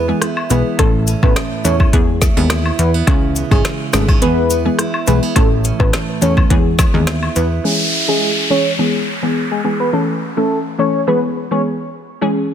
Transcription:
Already playing: E2 E3 B3 E4
0.08 E3 G#3 B3 G#4
0.22 E4, cross-stick, closed hi-hat
0.37 high woodblock
0.50 B1 E3 G#3 B3 G#4 B4, closed hi-hat, cabasa
0.79 A1 A2 E3 A3 C#4 A4, kick, closed hi-hat, high woodblock
1.07 C#4, closed hi-hat, cabasa
1.23 A1 E3 A3 C#4 A4 B4, kick, high woodblock
1.36 A3, cross-stick, snare, closed hi-hat
1.64 E2 E3 A3 C#4 A4 C#5, closed hi-hat, cabasa
1.80 kick, high woodblock
1.93 E2 E3 G#3 B3 G#4, kick, closed hi-hat
2.22 A3, kick, snare, closed hi-hat, cabasa
2.37 D#2 E3 G#3 B3 G#4
2.50 E4, cross-stick, snare, closed hi-hat
2.66 high woodblock
2.79 E2 A3 B4, closed hi-hat, cabasa
2.94 B3
3.07 C#2 C#3 E3 G#3 C#4 G#4, kick, closed hi-hat, high woodblock
3.36 B3, closed hi-hat, cabasa
3.51 G#1 E3 G#3 C#4 G#4, kick, high woodblock
3.65 G#3, cross-stick, snare, closed hi-hat
3.93 G#1 E3 G#3 B3 C#4 G#4 A4, cross-stick, snare, closed hi-hat, cabasa
4.08 C#4, kick, high woodblock
4.21 E2 E3 G#3 B3 G#4 B4, closed hi-hat
4.50 B3, closed hi-hat, cabasa
4.65 E3 G#3 B3 G#4
4.79 E4, cross-stick, closed hi-hat
4.94 high woodblock
5.07 B1 E3 G#3 A3 B3 G#4 B4, closed hi-hat, cabasa
5.23 B3
5.36 A1 A2 E3 A3 C#4 A4, kick, closed hi-hat, high woodblock
5.64 C#4, closed hi-hat, cabasa
5.79 A1 E3 A3 C#4 A4 B4, kick, high woodblock
5.93 A3, cross-stick, snare, closed hi-hat
6.21 E2 E3 A3 C#4 A4 C#5, closed hi-hat, cabasa
6.37 kick, high woodblock
6.50 E2 E3 G#3 B3 G#4, kick, closed hi-hat
6.79 B3, kick, snare, closed hi-hat, cabasa, high woodblock
6.94 D#2 E3 G#3 B3 G#4
7.07 E4, cross-stick, snare, closed hi-hat
7.23 high woodblock
7.36 E2 B3 B4, closed hi-hat, cabasa
7.64 E3 G#3 C#4 G#4, downlifter
8.08 E3 G#3 C#4 G#4
8.50 E3 G#3 C#4 G#4 C#5
8.79 E3 G#3 B3 G#4
9.22 E3 G#3 B3 G#4
9.51 G#4
9.64 E3 G#3 B3 G#4
9.80 B4
9.93 E3 A3 C#4 A4
10.37 E3 A3 C#4 A4
10.78 E3 A3 C#4 A4 C#5
11.07 E3 G#3 B3 G#4 B4
11.51 E3 G#3 B3 G#4 C#5
12.21 E3 G#3 C#4 G#4

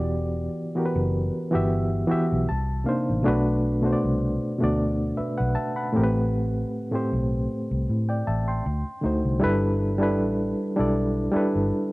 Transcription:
Already playing: E1 E3 B3 F#4 G4 D5
0.75 E3 B3 F#4 G4
0.79 A#4
0.86 B4
0.95 F#1
1.51 G1 E3 B3 F#4 G4
1.55 E5
2.07 E3 B3 F#4 G4 E5
2.12 muted fingered electric bass stroke
2.32 B1
2.49 C2 A5
2.84 C3 A#3 D4 D#4 F5
2.89 C5
3.10 A1
3.23 B2 A3 D4 F#4
3.27 B1 B4
3.82 B2 A3 D4 F#4
3.86 C5
3.93 D5
4.04 C2
4.59 D2 B2 A3 D4 F#4
4.64 D5
5.17 B4 E5, muted fingered electric bass stroke
5.38 B1 B4 F#5
5.55 E5 A5
5.76 F#5 B5
5.93 A2 A3 C4 G4
5.97 A1 A#4
6.04 B4
6.91 A2 A3 C4 G4
6.95 C5
7.13 B1
7.71 C2
7.89 A2
8.09 D5 G5
8.27 A1 E5 A5
8.48 G5 C6
8.66 D2
9.01 D2 D3 A3 D#4 F#4
9.06 C5
9.25 C2
9.40 G1 G3 D4 E4 A4
9.44 B4
9.98 G3 D4 E4 A4
10.03 B4
10.20 A1
10.76 B1 G3 D4 E4 A4
10.80 D5
11.32 G3 D4 E4 A4, muted fingered electric bass stroke
11.36 B4
11.55 G1

